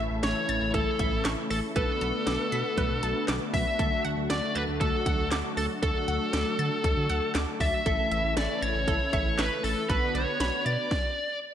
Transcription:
Already playing: C#3 E3 A3 C#4 E4 A4
0.00 E5
0.11 A1
0.23 A1 C#5 C#6, snare, closed hi-hat
0.49 A1 A6, closed hi-hat
0.62 A1
0.74 A1 A4, kick, closed hi-hat
0.99 A1 E5, kick, closed hi-hat
1.12 A1
1.25 A1 C#6, snare, clap, closed hi-hat
1.51 A1 A4 A6, open hi-hat
1.76 B1 D3 B3 D4 F#4 A4 B4, kick, closed hi-hat
2.01 B1 A5, closed hi-hat
2.27 B1 D6, snare, closed hi-hat
2.52 B2 B6, closed hi-hat
2.77 B1 B4, kick, closed hi-hat
2.91 B2
3.03 B1 A5, closed hi-hat
3.28 B1 D6, snare, clap, closed hi-hat
3.54 B1 E5 B6, kick, open hi-hat
3.79 D2 F#3 A3 D4 F#4 A4, kick, closed hi-hat
4.04 D2 F#5, closed hi-hat
4.17 D2
4.30 D2 D5 D6, snare, closed hi-hat
4.55 D2 B4 A6, closed hi-hat
4.68 D2
4.80 D2 A4, kick, closed hi-hat
5.06 D2 F#5, kick, closed hi-hat
5.19 D2
5.32 D2 D6, snare, clap, closed hi-hat
5.57 D2 A4 A6, open hi-hat
5.83 D2 A4, kick, closed hi-hat
6.08 D2 F#5, closed hi-hat
6.33 D2 D6, snare, closed hi-hat
6.59 D3 A6, closed hi-hat
6.84 D2 A4, kick, closed hi-hat
6.97 D3
7.10 D2 F#5, closed hi-hat
7.35 D2 D6, snare, clap, closed hi-hat
7.60 D2 E5 A6, kick, open hi-hat
7.86 A1 C#3 E3 A3 C#4 E4 A4, kick, closed hi-hat
8.11 A1 E5, closed hi-hat
8.24 A1
8.37 A1 D5 C#6, snare, closed hi-hat
8.62 A1 C#5 A6, closed hi-hat
8.75 A1
8.88 A1 A4, kick, closed hi-hat
9.13 A1 C#5 E5, kick, closed hi-hat
9.26 A1
9.39 A1 B4 C#6, snare, clap, closed hi-hat
9.64 A1 A4 A6, open hi-hat
9.89 B1 D3 B3 D4 F#4 A4 B4, kick, closed hi-hat
10.15 B1 C#5 D5, closed hi-hat
10.40 B1 B5, snare, closed hi-hat
10.66 B2 D5 A6, closed hi-hat
10.91 kick, snare

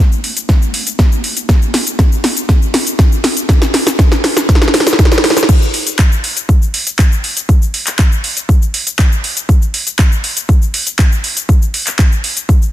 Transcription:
0.12 cabasa
0.24 open hi-hat
0.37 closed hi-hat, cabasa
0.49 kick, snare, closed hi-hat, cabasa
0.62 cabasa
0.74 open hi-hat
0.87 closed hi-hat, cabasa
0.99 kick, snare, closed hi-hat, cabasa
1.12 cabasa
1.24 open hi-hat
1.37 closed hi-hat, cabasa
1.49 kick, snare, closed hi-hat, cabasa
1.62 cabasa
1.74 snare, open hi-hat
1.87 closed hi-hat, cabasa
1.99 kick, snare, closed hi-hat, cabasa
2.12 cabasa
2.24 snare, open hi-hat
2.37 closed hi-hat, cabasa
2.49 kick, snare, closed hi-hat, cabasa
2.62 cabasa
2.74 snare, open hi-hat
2.87 closed hi-hat, cabasa
2.99 kick, snare, closed hi-hat, cabasa
3.12 cabasa
3.24 snare, open hi-hat
3.37 closed hi-hat, cabasa
3.49 kick, snare, closed hi-hat, cabasa
3.62 snare, cabasa
3.74 snare, open hi-hat
3.87 snare, closed hi-hat, cabasa
3.99 kick, snare, closed hi-hat, cabasa
4.12 snare, cabasa
4.24 snare, open hi-hat
4.37 snare, closed hi-hat, cabasa
4.49 kick, snare, closed hi-hat, cabasa
4.55 snare
4.62 snare, cabasa
4.68 snare
4.74 snare, open hi-hat
4.80 snare
4.87 snare, closed hi-hat, cabasa
4.93 snare
4.99 kick, snare, closed hi-hat, cabasa
5.05 snare
5.12 snare, cabasa
5.18 snare
5.24 snare, open hi-hat
5.30 snare
5.37 snare, closed hi-hat, cabasa
5.43 snare
5.49 kick, closed hi-hat, crash, cabasa
5.62 cabasa
5.74 open hi-hat
5.87 closed hi-hat, cabasa
5.99 kick, clap, closed hi-hat, cabasa
6.12 cabasa
6.24 open hi-hat
6.37 closed hi-hat, cabasa
6.49 kick, closed hi-hat, cabasa
6.62 cabasa
6.74 open hi-hat
6.87 closed hi-hat, cabasa
6.99 kick, clap, closed hi-hat, cabasa
7.12 cabasa
7.24 open hi-hat
7.37 closed hi-hat, cabasa
7.49 kick, closed hi-hat, cabasa
7.62 cabasa
7.74 open hi-hat
7.87 clap, closed hi-hat, cabasa
7.99 kick, clap, closed hi-hat, cabasa
8.12 cabasa
8.24 open hi-hat
8.37 closed hi-hat, cabasa
8.49 kick, closed hi-hat, cabasa
8.62 cabasa
8.74 open hi-hat
8.87 closed hi-hat, cabasa
8.99 kick, clap, closed hi-hat, cabasa
9.12 cabasa
9.24 open hi-hat
9.37 closed hi-hat, cabasa
9.49 kick, closed hi-hat, cabasa
9.62 cabasa
9.74 open hi-hat
9.87 closed hi-hat, cabasa
9.99 kick, clap, closed hi-hat, cabasa
10.12 cabasa
10.24 open hi-hat
10.37 closed hi-hat, cabasa
10.49 kick, closed hi-hat, cabasa
10.62 cabasa
10.74 open hi-hat
10.87 closed hi-hat, cabasa
10.99 kick, clap, closed hi-hat, cabasa
11.12 cabasa
11.24 open hi-hat
11.37 closed hi-hat, cabasa
11.49 kick, closed hi-hat, cabasa
11.62 cabasa
11.74 open hi-hat
11.87 clap, closed hi-hat, cabasa
11.99 kick, clap, closed hi-hat, cabasa
12.12 cabasa
12.24 open hi-hat
12.37 closed hi-hat, cabasa
12.49 kick, closed hi-hat, cabasa
12.62 cabasa

